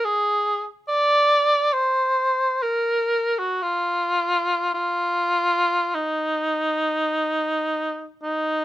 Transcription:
0.05 G#4
0.88 D5
1.73 C5
2.63 A#4
3.39 F#4
3.62 F4
4.74 F4
5.95 D#4
8.23 D#4

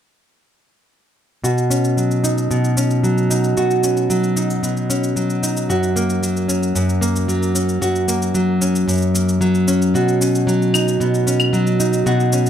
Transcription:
1.43 B2 F#4, cabasa
1.58 cabasa
1.70 C#4, cabasa
1.85 cabasa
1.97 F#3, cabasa
2.11 cabasa
2.24 D#4, cabasa
2.38 cabasa
2.51 B2, cabasa
2.64 cabasa
2.77 C#4, cabasa
2.91 cabasa
3.03 F#3, cabasa
3.18 cabasa
3.30 D#4, cabasa
3.44 cabasa
3.57 B2 F#4, cabasa
3.71 cabasa
3.83 C#4, cabasa
3.97 cabasa
4.10 F#3, cabasa
4.24 cabasa
4.36 D#4, cabasa
4.50 cabasa
4.63 B2, cabasa
4.77 cabasa
4.90 C#4, cabasa
5.04 cabasa
5.16 F#3, cabasa
5.30 cabasa
5.43 D#4, cabasa
5.57 cabasa
5.69 F#2 F#4, cabasa
5.83 cabasa
5.96 A#3, cabasa
6.10 cabasa
6.22 F#3, cabasa
6.37 cabasa
6.48 C#4, cabasa
6.63 cabasa
6.75 F#2, cabasa
6.89 cabasa
7.01 A#3, cabasa
7.16 cabasa
7.28 F#3, cabasa
7.43 cabasa
7.55 C#4, cabasa
7.69 cabasa
7.81 F#2 F#4, cabasa
7.95 cabasa
8.08 A#3, cabasa
8.22 cabasa
8.35 F#3, cabasa
8.61 C#4, cabasa
8.76 cabasa
8.88 F#2, cabasa
8.91 cabasa
8.95 cabasa
8.98 cabasa
9.00 cabasa
9.02 cabasa
9.14 A#3, cabasa
9.29 cabasa
9.41 F#3, cabasa
9.55 cabasa
9.68 C#4, cabasa
9.82 cabasa
9.94 B2 F#4, cabasa
10.08 cabasa
10.21 C#4, cabasa
10.35 cabasa
10.47 F#3, cabasa
10.62 cabasa
10.74 D#4, cabasa, claves
10.88 cabasa
11.00 B2, cabasa
11.14 cabasa
11.27 C#4, cabasa
11.40 cabasa, claves
11.53 F#3, cabasa
11.67 cabasa
11.80 D#4, cabasa
11.93 cabasa
12.06 B2 F#4, cabasa
12.20 cabasa
12.33 C#4, cabasa
12.46 cabasa

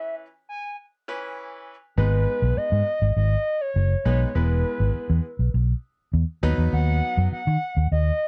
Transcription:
Already playing: E3 C#4 B4 E5
0.49 G#5
1.08 E3 C#4 B4
1.97 G#1 G#3 B3 D#4 B4
2.42 B1
2.57 D#5, muted fingered electric bass stroke
2.72 G#2
3.02 G#1
3.16 G#1 D#5
3.61 C#5
3.76 F#1
4.05 B1 G#3 B3 D#4 B4 C#5
4.28 C#5
4.35 E1 G#3 B3 E4 B4
4.80 G#1
4.95 muted fingered electric bass stroke
5.10 E2
5.39 B1
5.54 B1
6.13 E2
6.43 D#2 F#3 B3 D#4 B4
6.58 E2
6.73 D#2 F#5
7.17 F#2
7.32 F#5, muted fingered electric bass stroke
7.47 D#3
7.77 D#2
7.92 D#2 D#5

